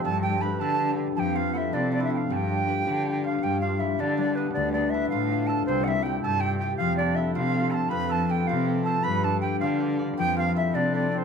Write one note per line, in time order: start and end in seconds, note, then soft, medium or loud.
0.00 0.52 G2 loud
0.00 0.11 F3 medium
0.00 0.48 C4 medium
0.00 0.49 C4 medium
0.00 1.73 D4 medium
0.00 1.42 E4 medium
0.00 1.54 F4 medium
0.00 0.22 G4 medium
0.00 0.41 G4 soft
0.00 1.55 A4 medium
0.00 0.21 A5 loud
0.04 1.23 G3 medium
0.04 0.61 A4 medium
0.22 1.17 G4 medium
0.22 0.43 G5 loud
0.41 0.61 D4 soft
0.41 0.61 G4 soft
0.41 0.61 B4 medium
0.41 3.16 B4 medium
0.41 0.61 B5 medium
0.59 1.08 D3 medium
0.59 2.66 D4 soft
0.59 2.67 G4 soft
0.59 3.54 A4 medium
0.59 1.60 B4 medium
0.59 0.91 A5 loud
1.16 1.64 F2 loud
1.16 2.35 F3 medium
1.16 2.30 G4 medium
1.16 1.37 G5 loud
1.16 1.20 A5 loud
1.36 1.60 F4 medium
1.36 1.55 F5 loud
1.53 1.73 C4 medium
1.53 2.00 E4 medium
1.53 1.73 F4 soft
1.53 1.74 A4 medium
1.53 1.75 E5 medium
1.53 1.58 F#5 medium
1.73 2.21 C3 loud
1.73 2.74 C4 medium
1.73 1.91 D4 medium
1.73 4.26 F4 soft
1.73 3.94 A4 medium
1.73 1.92 D5 medium
1.92 3.98 D4 medium
1.92 2.01 D5 medium
2.00 2.16 E4 medium
2.00 2.12 E5 medium
2.10 3.24 F4 medium
2.10 2.18 G5 medium
2.17 2.34 F5 medium
2.30 2.77 G2 loud
2.30 3.42 G3 medium
2.30 3.43 G4 medium
2.30 2.37 A5 medium
2.36 3.25 G5 loud
2.67 2.86 D4 soft
2.67 2.86 G4 soft
2.67 2.86 B4 medium
2.86 3.34 D3 medium
2.86 3.62 D4 medium
2.86 5.22 G4 soft
2.86 4.92 B4 medium
3.24 3.62 F4 medium
3.24 3.44 F5 medium
3.43 3.90 G2 loud
3.43 3.79 G3 medium
3.43 6.05 G4 medium
3.43 3.60 G5 loud
3.61 3.99 D4 medium
3.61 3.86 F4 medium
3.61 3.81 F5 medium
3.79 4.17 G3 medium
3.79 4.94 E4 medium
3.79 4.02 E5 medium
3.99 4.46 D3 medium
3.99 4.17 D4 medium
3.99 4.37 D4 medium
3.99 4.17 D5 medium
4.17 4.60 G3 medium
4.17 4.56 D4 medium
4.17 4.37 D5 medium
4.35 5.74 B3 medium
4.35 4.94 D4 medium
4.35 4.52 B4 medium
4.53 5.02 D2 medium
4.53 5.73 D3 medium
4.53 4.75 D4 medium
4.53 4.71 D5 loud
4.72 8.07 A3 medium
4.72 6.98 D4 medium
4.72 4.91 D5 medium
4.90 5.08 E5 medium
4.94 5.31 D4 medium
4.94 5.18 E4 medium
5.09 5.58 A2 loud
5.09 5.50 F4 medium
5.09 5.94 F4 medium
5.09 5.48 F5 loud
5.31 8.11 D4 medium
5.47 6.11 F4 medium
5.47 6.24 A4 medium
5.47 5.65 A5 loud
5.66 6.14 C2 loud
5.66 6.85 C3 medium
5.66 7.97 C4 medium
5.66 5.85 C5 medium
5.84 6.85 G3 medium
5.84 6.86 E4 medium
5.84 6.04 E5 loud
5.84 5.89 F#5 medium
6.03 6.43 E4 medium
6.03 6.43 G4 medium
6.03 6.21 G5 medium
6.22 6.71 G2 loud
6.22 6.61 G4 medium
6.22 7.71 A4 medium
6.22 6.42 A5 loud
6.40 6.86 E4 medium
6.40 6.62 G4 medium
6.40 6.57 G5 loud
6.58 8.97 G4 medium
6.58 8.29 G4 medium
6.58 6.76 G5 medium
6.77 7.27 F2 loud
6.77 7.89 F3 medium
6.77 7.24 F4 medium
6.77 6.96 F5 loud
6.97 8.10 C4 medium
6.97 10.72 D4 medium
6.97 7.17 D5 loud
7.15 7.41 E4 medium
7.15 7.54 A4 medium
7.15 7.34 E5 medium
7.34 7.83 C3 medium
7.34 7.48 F4 medium
7.34 7.72 C5 medium
7.34 7.72 F5 loud
7.48 7.59 F4 medium
7.54 8.29 A4 medium
7.60 8.49 F4 medium
7.70 8.09 A4 medium
7.70 8.48 C5 medium
7.70 7.91 A5 loud
7.70 7.75 B5 medium
7.89 8.39 F2 loud
7.89 9.10 F3 medium
7.89 9.04 B4 medium
7.89 8.08 B5 loud
8.08 9.49 C4 medium
8.08 8.85 A4 medium
8.08 8.27 A5 loud
8.08 8.13 B5 loud
8.27 9.41 G4 medium
8.27 8.68 A4 medium
8.27 8.49 G5 medium
8.27 8.32 A5 medium
8.47 8.96 C3 loud
8.47 9.61 F4 medium
8.47 8.87 C5 medium
8.47 8.67 F5 loud
8.68 10.55 A4 medium
8.84 9.23 A4 medium
8.84 9.49 C5 medium
8.84 9.05 A5 loud
9.03 9.52 G2 loud
9.03 10.23 G3 medium
9.03 11.18 B4 medium
9.03 9.25 B5 loud
9.24 11.24 D4 medium
9.24 11.24 A4 medium
9.24 9.40 A5 loud
9.41 10.17 G4 medium
9.41 9.80 B4 medium
9.41 9.59 G5 medium
9.60 10.08 D3 medium
9.60 10.36 F4 medium
9.60 9.99 D5 medium
9.60 9.78 F5 medium
9.80 10.43 B4 medium
9.99 11.24 D5 medium
10.17 10.64 F2 loud
10.17 11.24 F3 medium
10.17 11.24 G4 medium
10.17 10.35 G5 loud
10.37 10.75 C4 medium
10.37 10.63 F4 medium
10.37 10.55 F5 loud
10.55 11.24 E4 medium
10.55 10.93 A4 medium
10.55 10.76 E5 medium
10.73 11.21 C3 medium
10.73 11.11 C4 medium
10.73 10.95 D4 medium
10.73 10.93 D5 loud
10.93 11.24 D4 medium
10.93 11.24 A4 medium
10.93 11.14 D5 medium
11.11 11.24 C4 medium
11.11 11.19 D5 medium
11.18 11.24 C5 medium